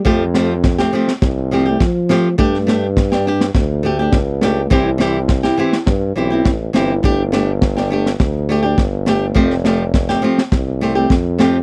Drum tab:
SD |--o-oo-oo-o-o-o-|-oo-oo-oo---o-o-|--o-oo-oo---o-o-|--o-oo-oo-o-o-o-|
BD |o---o---o---o---|o---o---o---o---|o---o---o---o---|o---o---o---o---|

SD |-oo-oo-oo-o-o-o-|
BD |o---o---o---o---|